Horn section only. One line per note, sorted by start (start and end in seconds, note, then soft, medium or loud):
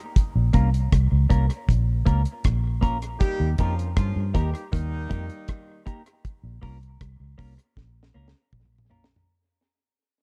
3.20 3.51 G3 loud
3.20 3.50 A#3 loud
3.20 3.50 D#4 loud
3.20 3.51 G4 loud
3.58 3.89 F3 medium
3.58 3.89 A#3 medium
3.58 3.89 C#4 medium
3.58 3.89 F4 medium
3.96 4.26 F3 medium
3.96 4.27 A#3 medium
3.96 4.26 C#4 medium
3.96 4.26 F4 medium
4.33 4.64 G3 medium
4.33 4.64 A#3 medium
4.33 4.64 D#4 medium
4.33 4.64 G4 medium
4.71 5.82 D#3 loud
4.71 5.82 G3 loud
4.71 5.82 A#3 loud
4.71 5.82 D#4 loud